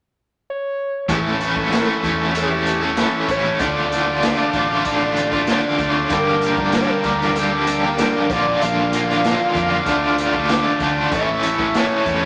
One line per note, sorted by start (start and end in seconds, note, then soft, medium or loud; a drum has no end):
0.50 1.07 C#5 medium
1.08 1.82 A1 loud
1.08 1.69 A2 medium
1.08 1.38 E3 medium
1.08 1.40 A3 medium
1.08 1.40 C#4 medium
1.08 1.41 E4 medium
1.08 3.58 A4 medium
1.08 1.69 A4 medium
1.08 3.58 C#5 medium
1.08 3.57 E5 medium
1.08 3.58 C#6 medium
1.08 kick loud
1.08 closed hi-hat loud
1.39 1.70 E3 medium
1.39 1.57 A3 medium
1.39 1.55 C#4 medium
1.39 1.54 E4 medium
1.39 closed hi-hat medium
1.55 1.72 A3 medium
1.55 1.71 C#4 medium
1.55 1.72 E4 medium
1.55 kick medium
1.70 2.34 A2 medium
1.70 2.00 E3 medium
1.70 2.02 A3 medium
1.70 2.03 C#4 loud
1.70 2.03 E4 loud
1.70 1.80 A4 medium
1.70 snare loud
1.70 closed hi-hat medium
1.79 1.89 A#4 medium
1.87 2.38 A4 loud
2.02 3.01 E2 medium
2.02 2.32 E3 medium
2.02 2.21 A3 medium
2.02 2.19 C#4 medium
2.02 2.17 E4 medium
2.02 kick medium
2.02 closed hi-hat medium
2.18 2.34 A3 medium
2.18 2.35 C#4 medium
2.18 2.36 E4 medium
2.33 2.81 E3 medium
2.33 2.52 A3 medium
2.33 2.50 C#4 medium
2.33 2.49 E4 medium
2.33 2.84 G4 medium
2.33 closed hi-hat medium
2.50 2.82 A3 medium
2.50 2.81 C#4 medium
2.50 2.79 E4 medium
2.66 closed hi-hat medium
2.81 2.97 A3 medium
2.81 2.98 C#4 medium
2.81 2.99 E4 medium
2.81 3.32 A4 loud
2.97 3.58 A2 medium
2.97 3.27 E3 medium
2.97 3.28 A3 medium
2.97 3.29 C#4 medium
2.97 3.30 E4 loud
2.97 snare medium
2.97 closed hi-hat medium
3.28 3.53 A1 medium
3.28 3.58 E3 medium
3.28 3.46 A3 medium
3.28 3.45 C#4 medium
3.28 3.42 E4 medium
3.28 3.60 C#5 loud
3.28 kick medium
3.28 closed hi-hat medium
3.44 3.59 A3 medium
3.44 3.59 C#4 medium
3.44 3.58 E4 medium
3.59 4.33 D2 medium
3.59 3.90 D3 medium
3.59 3.91 A3 medium
3.59 3.93 D4 medium
3.59 3.94 F4 medium
3.59 6.09 A4 medium
3.59 5.45 D5 loud
3.59 9.84 D5 medium
3.59 6.09 F5 medium
3.59 11.09 D6 medium
3.59 kick loud
3.59 closed hi-hat medium
3.91 4.21 D3 medium
3.91 4.09 A3 medium
3.91 4.08 D4 medium
3.91 4.06 F4 medium
3.91 snare soft
3.91 closed hi-hat medium
4.07 4.22 A3 medium
4.07 4.24 D4 medium
4.07 4.24 F4 medium
4.22 4.53 D3 medium
4.22 4.54 A3 medium
4.22 4.56 D4 loud
4.22 4.56 F4 loud
4.22 snare loud
4.22 closed hi-hat medium
4.53 5.51 A1 medium
4.53 4.84 D3 medium
4.53 4.72 A3 medium
4.53 4.72 D4 medium
4.53 kick medium
4.53 closed hi-hat medium
4.57 4.69 F4 medium
4.70 4.85 A3 soft
4.70 4.87 D4 medium
4.70 4.88 F4 medium
4.85 5.33 D3 medium
4.85 5.02 A3 medium
4.85 5.02 D4 medium
4.85 kick medium
4.85 closed hi-hat medium
4.89 4.99 F4 medium
5.00 5.34 A3 medium
5.00 5.33 D4 medium
5.00 5.31 F4 medium
5.16 closed hi-hat medium
5.32 5.48 A3 medium
5.32 5.49 D4 medium
5.32 5.50 F4 medium
5.32 kick medium
5.47 5.77 D3 loud
5.47 5.78 A3 medium
5.47 5.79 D4 medium
5.47 5.80 F4 medium
5.47 snare loud
5.47 closed hi-hat medium
5.51 5.92 D5 medium
5.78 6.03 D2 medium
5.78 6.08 D3 medium
5.78 5.97 A3 medium
5.78 5.96 D4 medium
5.78 5.93 F4 medium
5.78 kick medium
5.78 closed hi-hat medium
5.92 6.08 F4 medium
5.92 6.09 C#5 medium
5.96 6.10 A3 medium
5.96 6.13 D4 medium
6.10 6.84 G1 loud
6.10 6.73 G2 medium
6.10 6.74 D3 medium
6.10 6.42 G3 medium
6.10 9.82 A#3 medium
6.10 6.43 A#3 medium
6.10 6.45 D4 loud
6.10 6.71 A#4 medium
6.10 8.27 G5 medium
6.10 kick loud
6.10 closed hi-hat medium
6.14 6.45 G4 medium
6.41 6.60 G3 medium
6.41 6.59 A#3 medium
6.41 closed hi-hat medium
6.45 6.59 D4 medium
6.45 6.57 G4 medium
6.57 6.76 A#3 medium
6.57 6.77 D4 medium
6.57 6.76 G4 medium
6.57 kick medium
6.61 6.74 G3 medium
6.72 7.37 G2 medium
6.72 7.37 D3 medium
6.72 7.04 G3 loud
6.72 6.83 A#4 loud
6.72 snare loud
6.72 closed hi-hat medium
6.77 7.04 A#3 medium
6.77 7.06 D4 loud
6.77 7.06 G4 medium
6.81 6.91 C#5 medium
6.90 7.39 A#4 loud
7.04 8.02 D2 medium
7.04 7.22 G3 medium
7.04 7.22 A#3 medium
7.04 7.20 D4 medium
7.04 kick medium
7.04 closed hi-hat medium
7.08 7.19 G4 medium
7.20 7.35 G3 soft
7.20 7.37 A#3 medium
7.20 7.37 D4 medium
7.20 7.38 G4 medium
7.20 snare soft
7.35 7.53 G3 medium
7.35 7.52 A#3 medium
7.35 7.51 D4 medium
7.35 7.50 G4 medium
7.35 7.87 A4 loud
7.35 closed hi-hat medium
7.52 7.85 G3 medium
7.52 7.84 A#3 medium
7.52 7.83 D4 medium
7.52 7.82 G4 medium
7.67 closed hi-hat medium
7.83 7.97 G3 medium
7.83 7.98 A#3 medium
7.83 7.99 D4 medium
7.83 7.99 G4 medium
7.83 8.32 A#4 medium
7.97 8.28 G2 medium
7.97 8.28 D3 medium
7.97 8.28 G3 medium
7.97 8.29 A#3 loud
7.97 8.29 D4 medium
7.97 8.29 G4 medium
7.97 snare loud
7.97 closed hi-hat medium
8.30 8.54 A#1 loud
8.30 8.60 A#2 medium
8.30 8.61 D3 medium
8.30 8.47 A#3 medium
8.30 8.45 D4 loud
8.30 8.43 F4 loud
8.30 8.63 D5 loud
8.30 11.09 F5 medium
8.30 kick loud
8.30 closed hi-hat medium
8.44 8.62 A#3 medium
8.44 8.62 D4 medium
8.44 8.63 F4 medium
8.61 9.35 A#1 medium
8.61 9.23 A#2 medium
8.61 8.91 D3 medium
8.61 8.93 A#3 medium
8.61 8.94 D4 medium
8.61 8.95 F4 medium
8.61 10.53 F5 loud
8.61 closed hi-hat medium
8.93 9.23 D3 medium
8.93 9.09 A#3 medium
8.93 9.08 D4 medium
8.93 9.06 F4 medium
8.93 closed hi-hat medium
9.07 9.24 A#3 medium
9.07 9.25 D4 medium
9.07 9.26 F4 medium
9.07 snare soft
9.24 9.85 A#2 medium
9.24 9.54 D3 medium
9.24 9.55 A#3 medium
9.24 9.56 D4 medium
9.24 9.57 F4 loud
9.24 snare loud
9.24 closed hi-hat medium
9.55 9.80 F2 medium
9.55 9.85 D3 medium
9.55 9.71 A#3 medium
9.55 9.70 D4 medium
9.55 9.69 F4 medium
9.55 kick medium
9.55 closed hi-hat medium
9.70 9.85 A#3 medium
9.70 9.85 D4 medium
9.70 9.84 F4 medium
9.86 10.60 D2 medium
9.86 10.33 D3 medium
9.86 10.04 A3 medium
9.86 10.01 D4 medium
9.86 10.00 F4 loud
9.86 11.11 A4 medium
9.86 11.11 D5 medium
9.86 kick medium
9.86 closed hi-hat medium
10.01 10.36 A3 medium
10.01 10.33 D4 medium
10.01 10.31 F4 medium
10.18 closed hi-hat medium
10.32 10.49 A3 medium
10.32 10.49 D4 medium
10.32 10.50 F4 medium
10.32 kick medium
10.48 10.80 D3 medium
10.48 10.82 A3 medium
10.48 10.82 D4 medium
10.48 10.83 F4 medium
10.48 11.13 D5 medium
10.48 snare loud
10.48 closed hi-hat medium
10.80 11.05 D2 medium
10.80 11.10 D3 medium
10.80 10.98 A3 medium
10.80 10.96 D4 medium
10.80 kick medium
10.80 closed hi-hat medium
10.84 10.94 F4 medium
10.95 11.12 A3 medium
10.95 11.11 D4 medium
10.95 11.09 F4 medium
11.10 11.85 A1 medium
11.10 11.73 A2 medium
11.10 11.41 E3 medium
11.10 11.43 A3 medium
11.10 11.43 C#4 medium
11.10 11.44 E4 medium
11.10 12.25 A4 medium
11.10 12.25 C#5 medium
11.10 12.25 E5 medium
11.10 12.25 C#6 medium
11.10 kick loud
11.10 closed hi-hat medium
11.15 11.79 E5 loud
11.42 11.74 E3 medium
11.42 11.62 A3 medium
11.42 11.59 C#4 medium
11.42 11.58 E4 medium
11.42 closed hi-hat medium
11.59 11.75 A3 medium
11.59 11.75 C#4 medium
11.59 11.76 E4 medium
11.59 kick medium
11.74 12.25 A2 loud
11.74 12.05 E3 medium
11.74 12.07 A3 medium
11.74 12.07 C#4 medium
11.74 12.08 E4 loud
11.74 12.25 C#5 loud
11.74 snare loud
11.74 closed hi-hat medium
12.06 12.25 E2 medium
12.06 12.25 E3 medium
12.06 12.22 A3 medium
12.06 12.21 C#4 medium
12.06 12.19 E4 medium
12.06 kick medium
12.06 closed hi-hat medium
12.20 12.25 C#4 medium
12.20 12.25 E4 medium